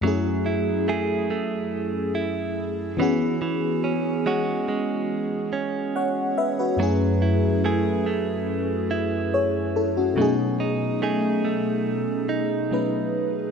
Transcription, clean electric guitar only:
X:1
M:4/4
L:1/8
Q:1/4=71
K:F#dor
V:1 name="Clean electric guitar"
F, E [A,EG] A,2 E2 E, | E, C [G,CF] G,2 C3 | F, E [A,EG] A,2 E3 | B,, D [A,DG] A,2 D3 |]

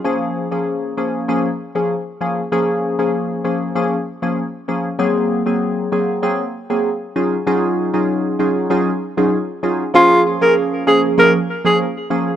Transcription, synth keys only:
X:1
M:4/4
L:1/16
Q:1/4=97
K:Db
V:1 name="Synth keys"
[F,B,DA]3 [F,B,DA]3 [F,B,DA]2 [F,B,DA] z2 [F,B,DA] z2 [F,B,DA] z | [F,B,DA]3 [F,B,DA]3 [F,B,DA]2 [F,B,DA] z2 [F,B,DA] z2 [F,B,DA] z | [G,B,CA]3 [G,B,CA]3 [G,B,CA]2 [G,B,CA] z2 [G,B,CA] z2 [G,DEFA] z | [G,DEFA]3 [G,DEFA]3 [G,DEFA]2 [G,DEFA] z2 [G,DEFA] z2 [G,DEFA] z |
[F,B,DA]3 [F,B,DA]3 [F,B,DA]2 [F,B,DA] z2 [F,B,DA] z2 [F,B,DA] z |]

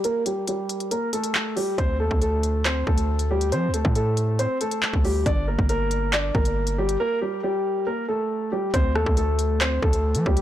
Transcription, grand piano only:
X:1
M:4/4
L:1/8
Q:1/4=138
K:Gm
V:1 name="Grand piano"
[B,B] [G,G] [G,G]2 [B,B] [A,A]2 [G,G] | [Cc] [A,A] [A,A]2 [Cc] [A,A]2 [G,G] | [Cc] [A,A] [A,A]2 [Cc] [A,A]2 [G,G] | [Dd] [B,B] [B,B]2 [Dd] [B,B]2 [G,G] |
[B,B] [G,G] [G,G]2 [B,B] [A,A]2 [G,G] | [Cc] [A,A] [A,A]2 [Cc] [A,A]2 [G,G] |]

